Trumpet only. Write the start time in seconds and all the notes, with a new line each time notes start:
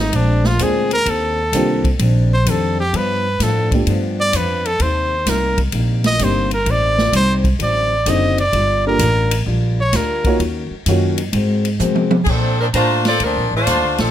0.00 D#4
0.16 D4
0.46 F4
0.63 G#4
0.93 A#4
1.10 A4
2.34 C5
2.50 A4
2.80 G4
2.96 B4
3.43 A4
4.20 D5
4.36 B4
4.66 A4
4.82 C5
5.30 A#4
6.07 D#5
6.23 C5
6.54 A#4
6.71 D5
7.16 C5
7.63 D5
8.10 D#5
8.40 D5
8.87 A#4
9.81 C#5
9.96 A#4